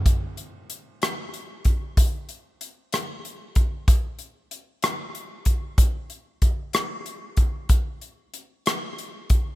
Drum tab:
HH |xxxxxx|xxxxxx|xxxxxx|xxxxxx|
SD |---r--|---r--|---r--|---r--|
BD |o----o|o----o|o----o|o-o--o|

HH |xxxxxx|
SD |---r--|
BD |o----o|